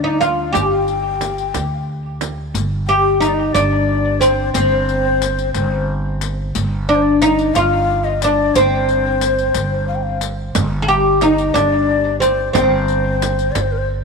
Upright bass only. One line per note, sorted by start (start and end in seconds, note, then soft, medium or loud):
0.00 0.50 D2 medium
0.54 1.50 G1 medium
1.55 2.51 D2 medium
2.54 3.51 G1 loud
3.55 4.51 G1 loud
4.55 5.51 G1 loud
5.55 6.51 G1 medium
6.56 7.51 G1 loud
7.56 8.51 G1 loud
8.55 9.51 G1 loud
9.55 10.51 G1 medium
10.55 11.51 G1 loud
11.55 12.51 G1 medium
12.55 13.51 G1 loud
13.56 14.04 G1 medium